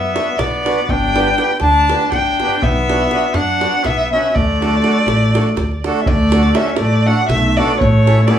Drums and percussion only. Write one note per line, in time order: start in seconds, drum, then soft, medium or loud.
0.16 davul high medium
0.39 davul high medium
0.39 davul low medium
0.66 davul high medium
0.78 davul high soft
0.89 davul low medium
1.03 davul high soft
1.16 davul high medium
1.38 davul high medium
1.50 davul high soft
1.60 davul high medium
1.90 davul high medium
2.12 davul high medium
2.12 davul low medium
2.40 davul high medium
2.51 davul high soft
2.62 davul low loud
2.76 davul high soft
2.90 davul high medium
3.11 davul high medium
3.22 davul high soft
3.34 davul high medium
3.61 davul high medium
3.85 davul high medium
3.85 davul low medium
4.25 davul high soft
4.36 davul low medium
4.62 davul high medium
4.73 davul high soft
4.84 davul high medium
4.96 davul high soft
5.08 davul high medium
5.21 davul high soft
5.35 davul high medium
5.46 davul high soft
5.57 davul high medium
5.57 davul low medium
5.71 davul high soft
5.84 davul high medium
5.96 davul high soft
6.06 davul low loud
6.32 davul high medium
6.55 davul high medium
6.66 davul high soft
6.76 davul high medium
7.30 davul high medium
7.30 davul low medium
7.43 davul high soft
7.81 davul low loud
8.07 davul high medium
8.17 davul high soft
8.28 davul high medium